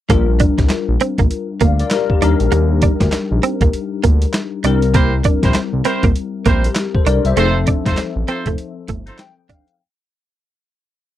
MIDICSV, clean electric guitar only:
0, 0, Header, 1, 3, 480
1, 0, Start_track
1, 0, Key_signature, -2, "major"
1, 0, Tempo, 606061
1, 75, Time_signature, 4, 2, 24, 8
1, 8853, End_track
2, 0, Start_track
2, 0, Title_t, "Clean electric guitar"
2, 0, Program_c, 0, 27
2, 79, Note_on_c, 0, 58, 83
2, 199, Note_off_c, 0, 58, 0
2, 318, Note_on_c, 0, 62, 75
2, 438, Note_off_c, 0, 62, 0
2, 800, Note_on_c, 0, 60, 80
2, 919, Note_off_c, 0, 60, 0
2, 945, Note_on_c, 0, 58, 76
2, 1021, Note_off_c, 0, 58, 0
2, 1275, Note_on_c, 0, 58, 74
2, 1396, Note_off_c, 0, 58, 0
2, 1758, Note_on_c, 0, 62, 64
2, 1878, Note_off_c, 0, 62, 0
2, 1994, Note_on_c, 0, 58, 89
2, 2116, Note_off_c, 0, 58, 0
2, 2239, Note_on_c, 0, 62, 68
2, 2359, Note_off_c, 0, 62, 0
2, 2719, Note_on_c, 0, 60, 74
2, 2838, Note_off_c, 0, 60, 0
2, 2866, Note_on_c, 0, 58, 77
2, 2942, Note_off_c, 0, 58, 0
2, 3197, Note_on_c, 0, 58, 74
2, 3317, Note_off_c, 0, 58, 0
2, 3679, Note_on_c, 0, 62, 70
2, 3799, Note_off_c, 0, 62, 0
2, 3918, Note_on_c, 0, 58, 91
2, 4038, Note_off_c, 0, 58, 0
2, 4159, Note_on_c, 0, 62, 68
2, 4278, Note_off_c, 0, 62, 0
2, 4636, Note_on_c, 0, 60, 85
2, 4757, Note_off_c, 0, 60, 0
2, 4782, Note_on_c, 0, 58, 79
2, 4860, Note_off_c, 0, 58, 0
2, 5115, Note_on_c, 0, 58, 72
2, 5236, Note_off_c, 0, 58, 0
2, 5596, Note_on_c, 0, 62, 70
2, 5717, Note_off_c, 0, 62, 0
2, 5838, Note_on_c, 0, 57, 84
2, 5958, Note_off_c, 0, 57, 0
2, 6080, Note_on_c, 0, 62, 76
2, 6199, Note_off_c, 0, 62, 0
2, 6562, Note_on_c, 0, 60, 75
2, 6680, Note_off_c, 0, 60, 0
2, 6709, Note_on_c, 0, 57, 76
2, 6784, Note_off_c, 0, 57, 0
2, 7042, Note_on_c, 0, 57, 70
2, 7160, Note_off_c, 0, 57, 0
2, 7520, Note_on_c, 0, 62, 68
2, 7639, Note_off_c, 0, 62, 0
2, 8853, End_track
3, 0, Start_track
3, 0, Title_t, "Muted clean electric guitar strokes"
3, 465, Note_on_c, 9, 29, 43
3, 544, Note_off_c, 9, 29, 0
3, 564, Note_on_c, 9, 29, 43
3, 643, Note_off_c, 9, 29, 0
3, 2384, Note_on_c, 9, 29, 47
3, 2463, Note_off_c, 9, 29, 0
3, 2477, Note_on_c, 9, 29, 42
3, 2556, Note_off_c, 9, 29, 0
3, 4307, Note_on_c, 9, 29, 44
3, 4386, Note_off_c, 9, 29, 0
3, 4396, Note_on_c, 9, 29, 42
3, 4476, Note_off_c, 9, 29, 0
3, 6229, Note_on_c, 9, 29, 45
3, 6308, Note_off_c, 9, 29, 0
3, 6323, Note_on_c, 9, 29, 42
3, 6402, Note_off_c, 9, 29, 0
3, 8853, End_track
0, 0, End_of_file